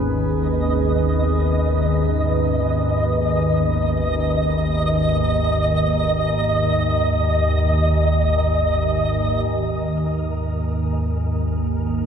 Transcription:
0.00 9.46 G#1 medium
0.00 9.45 D#2 medium
0.00 9.45 C#4 medium
0.00 9.47 G#4 medium
0.00 9.46 B4 medium
0.14 9.52 D#5 medium
9.46 12.06 G#1 medium
9.46 12.06 D#2 medium
9.46 12.06 A#4 medium
9.46 taiko medium

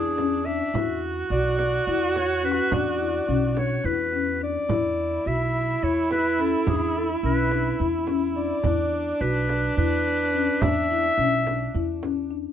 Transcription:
0.00 0.61 E2 medium
0.00 0.76 D4 medium
0.00 0.12 E4 medium
0.00 0.47 G#4 medium
0.18 0.40 C#4 medium
0.18 frame drum soft
0.46 0.69 D4 medium
0.46 1.04 E5 medium
0.46 frame drum soft
0.74 1.22 E2 medium
0.74 1.19 E4 medium
0.74 4.41 F#4 loud
0.74 frame drum medium
1.30 1.78 B1 medium
1.30 1.76 F#4 medium
1.30 1.57 D5 medium
1.59 1.85 D5 medium
1.59 frame drum soft
1.87 2.58 E2 medium
1.87 2.33 E4 medium
1.87 2.19 D5 medium
1.87 frame drum soft
2.16 2.47 C#5 medium
2.16 frame drum soft
2.43 2.66 C#4 medium
2.43 2.75 B4 medium
2.43 frame drum soft
2.72 3.19 E2 medium
2.72 2.94 D4 medium
2.72 3.60 D5 medium
2.72 frame drum medium
2.99 3.22 E4 medium
3.28 3.76 B1 medium
3.28 3.50 C#4 medium
3.55 3.78 D4 medium
3.55 3.87 C#5 medium
3.55 frame drum medium
3.84 4.56 E2 medium
3.84 4.07 E4 medium
3.84 4.42 B4 medium
4.13 4.36 C#4 medium
4.41 4.64 D4 medium
4.41 5.29 D5 loud
4.69 5.17 E2 medium
4.69 5.14 E4 medium
4.69 8.66 E4 loud
4.69 frame drum medium
5.25 5.74 B1 medium
5.25 5.71 F#4 medium
5.25 5.85 E5 medium
5.82 6.54 E2 medium
5.82 6.28 E4 medium
5.82 6.11 C#5 medium
5.82 frame drum soft
6.11 6.42 B4 medium
6.11 frame drum soft
6.39 6.61 C#4 medium
6.39 6.68 A4 medium
6.39 frame drum soft
6.67 7.14 E2 medium
6.67 6.89 D4 medium
6.67 6.94 G#4 medium
6.67 frame drum medium
6.95 7.18 E4 medium
6.95 7.10 A4 medium
7.23 7.71 B1 medium
7.23 7.46 C#4 medium
7.23 7.84 B4 medium
7.51 7.74 D4 medium
7.51 frame drum soft
7.79 8.51 E2 medium
7.79 8.02 E4 medium
7.79 frame drum soft
8.07 8.30 C#4 medium
8.07 frame drum soft
8.36 8.58 D4 medium
8.36 9.23 D5 medium
8.36 frame drum soft
8.64 9.12 E2 medium
8.64 12.30 D4 loud
8.64 9.09 E4 medium
8.64 frame drum medium
9.21 9.68 B1 medium
9.21 9.66 F#4 medium
9.21 9.77 B4 medium
9.49 frame drum soft
9.77 10.48 E2 medium
9.77 10.22 E4 medium
9.77 10.64 B4 medium
9.77 frame drum soft
10.34 10.56 C#4 medium
10.34 frame drum soft
10.62 11.09 E2 medium
10.62 10.84 D4 medium
10.62 12.03 E5 loud
10.62 frame drum medium
10.90 11.13 E4 medium
10.90 frame drum soft
11.18 11.65 B1 medium
11.18 11.40 C#4 medium
11.18 frame drum soft
11.46 11.69 D4 medium
11.46 frame drum medium
11.75 12.46 E2 medium
11.75 11.97 E4 medium
11.75 frame drum soft
12.03 12.25 C#4 medium
12.03 frame drum soft
12.31 12.53 D4 medium

